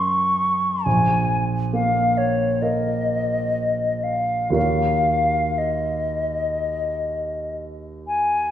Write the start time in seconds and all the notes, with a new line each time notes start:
Already playing: F#2 C#4 A#4 F5 C#6
0.84 A#1 G#5
1.73 A#3 F5
2.18 C#5
2.62 A#4 D#5 F5
4.04 F5
4.50 D#2 A#3 F#4 A#4 F5
4.54 C#5
5.58 D#5
8.08 G#5